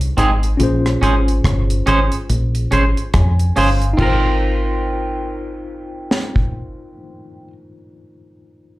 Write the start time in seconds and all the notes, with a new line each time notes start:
Already playing: C2 D#4 G4 G#4 C5
0.01 closed hi-hat
0.17 G#1 C4 D#4 G#4, closed hi-hat
0.43 closed hi-hat
0.57 A#1 C#4 F4 G#4, closed hi-hat
0.63 C5
0.86 cross-stick, closed hi-hat
1.02 G#1 C#4 G#4 C5, closed hi-hat
1.28 closed hi-hat
1.44 G1, kick, cross-stick, closed hi-hat
1.70 closed hi-hat
1.86 G#1 C#4 G#4 C5, closed hi-hat
2.12 closed hi-hat
2.30 A#1, closed hi-hat
2.55 closed hi-hat
2.71 G#1 C#4 G#4 C5, closed hi-hat
2.97 closed hi-hat
3.14 F2 G#5, kick, cross-stick, closed hi-hat
3.39 closed hi-hat
3.56 G1 C#4 G#4 C5 F5, open hi-hat
3.82 closed hi-hat
3.93 C4 D#4
3.98 G#1 F4 A#4, kick, crash
4.02 A#4 C5
6.11 snare
6.36 kick